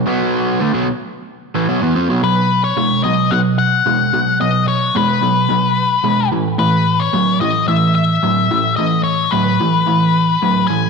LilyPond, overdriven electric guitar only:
\new Staff \with { instrumentName = "Overdriven electric guitar" } { \clef bass \time 4/4 \key b \mixolydian \tempo 4 = 110 <b, fis b>4 <d a>16 <b, fis>16 r4 r16 <a, e>16 <b, fis>16 <e b>16 <eis c'>16 <b, fis>16 | <b, fis>4 <b, gis>8 <b, fis>8 <b, fis>4 <b, gis>8 <b, fis>8 | <b, fis>4 <b, gis>8 <b, fis>8 <b, fis>4 <b, gis>8 <a, e>8 | <a, e>4 <a, fis>8 <a, e>8 <a, e>4 <a, fis>8 <a, e>8 |
<a, e>4 <a, fis>8 <a, e>8 <a, e>4 <a, fis>8 <a, e>8 | }